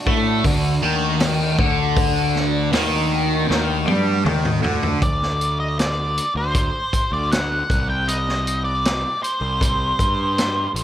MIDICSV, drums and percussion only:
0, 0, Header, 1, 2, 480
1, 0, Start_track
1, 0, Tempo, 763359
1, 1234, Time_signature, 4, 2, 24, 8
1, 6813, End_track
2, 0, Start_track
2, 0, Title_t, "Drums"
2, 42, Note_on_c, 9, 36, 92
2, 105, Note_off_c, 9, 36, 0
2, 278, Note_on_c, 9, 46, 55
2, 279, Note_on_c, 9, 36, 94
2, 341, Note_off_c, 9, 46, 0
2, 342, Note_off_c, 9, 36, 0
2, 755, Note_on_c, 9, 46, 53
2, 760, Note_on_c, 9, 38, 96
2, 818, Note_off_c, 9, 46, 0
2, 822, Note_off_c, 9, 38, 0
2, 998, Note_on_c, 9, 36, 106
2, 1060, Note_off_c, 9, 36, 0
2, 1236, Note_on_c, 9, 36, 107
2, 1237, Note_on_c, 9, 46, 55
2, 1299, Note_off_c, 9, 36, 0
2, 1300, Note_off_c, 9, 46, 0
2, 1483, Note_on_c, 9, 38, 30
2, 1545, Note_off_c, 9, 38, 0
2, 1716, Note_on_c, 9, 46, 54
2, 1721, Note_on_c, 9, 38, 92
2, 1779, Note_off_c, 9, 46, 0
2, 1783, Note_off_c, 9, 38, 0
2, 2205, Note_on_c, 9, 38, 61
2, 2267, Note_off_c, 9, 38, 0
2, 2437, Note_on_c, 9, 48, 77
2, 2500, Note_off_c, 9, 48, 0
2, 2680, Note_on_c, 9, 47, 80
2, 2743, Note_off_c, 9, 47, 0
2, 2799, Note_on_c, 9, 45, 77
2, 2862, Note_off_c, 9, 45, 0
2, 2918, Note_on_c, 9, 43, 88
2, 2981, Note_off_c, 9, 43, 0
2, 3037, Note_on_c, 9, 43, 78
2, 3100, Note_off_c, 9, 43, 0
2, 3156, Note_on_c, 9, 36, 104
2, 3158, Note_on_c, 9, 42, 69
2, 3219, Note_off_c, 9, 36, 0
2, 3221, Note_off_c, 9, 42, 0
2, 3286, Note_on_c, 9, 38, 28
2, 3348, Note_off_c, 9, 38, 0
2, 3402, Note_on_c, 9, 42, 44
2, 3465, Note_off_c, 9, 42, 0
2, 3641, Note_on_c, 9, 42, 65
2, 3646, Note_on_c, 9, 38, 85
2, 3704, Note_off_c, 9, 42, 0
2, 3709, Note_off_c, 9, 38, 0
2, 3883, Note_on_c, 9, 42, 54
2, 3946, Note_off_c, 9, 42, 0
2, 4117, Note_on_c, 9, 36, 103
2, 4117, Note_on_c, 9, 42, 74
2, 4179, Note_off_c, 9, 42, 0
2, 4180, Note_off_c, 9, 36, 0
2, 4358, Note_on_c, 9, 36, 78
2, 4360, Note_on_c, 9, 42, 55
2, 4421, Note_off_c, 9, 36, 0
2, 4423, Note_off_c, 9, 42, 0
2, 4604, Note_on_c, 9, 42, 65
2, 4609, Note_on_c, 9, 38, 92
2, 4667, Note_off_c, 9, 42, 0
2, 4672, Note_off_c, 9, 38, 0
2, 4841, Note_on_c, 9, 36, 94
2, 4848, Note_on_c, 9, 42, 51
2, 4904, Note_off_c, 9, 36, 0
2, 4911, Note_off_c, 9, 42, 0
2, 5083, Note_on_c, 9, 42, 75
2, 5146, Note_off_c, 9, 42, 0
2, 5211, Note_on_c, 9, 38, 26
2, 5274, Note_off_c, 9, 38, 0
2, 5326, Note_on_c, 9, 42, 52
2, 5389, Note_off_c, 9, 42, 0
2, 5567, Note_on_c, 9, 42, 71
2, 5571, Note_on_c, 9, 38, 89
2, 5630, Note_off_c, 9, 42, 0
2, 5634, Note_off_c, 9, 38, 0
2, 5810, Note_on_c, 9, 42, 53
2, 5873, Note_off_c, 9, 42, 0
2, 6043, Note_on_c, 9, 36, 97
2, 6050, Note_on_c, 9, 42, 86
2, 6106, Note_off_c, 9, 36, 0
2, 6113, Note_off_c, 9, 42, 0
2, 6283, Note_on_c, 9, 36, 76
2, 6287, Note_on_c, 9, 42, 58
2, 6346, Note_off_c, 9, 36, 0
2, 6350, Note_off_c, 9, 42, 0
2, 6528, Note_on_c, 9, 42, 77
2, 6532, Note_on_c, 9, 38, 87
2, 6591, Note_off_c, 9, 42, 0
2, 6595, Note_off_c, 9, 38, 0
2, 6766, Note_on_c, 9, 42, 55
2, 6813, Note_off_c, 9, 42, 0
2, 6813, End_track
0, 0, End_of_file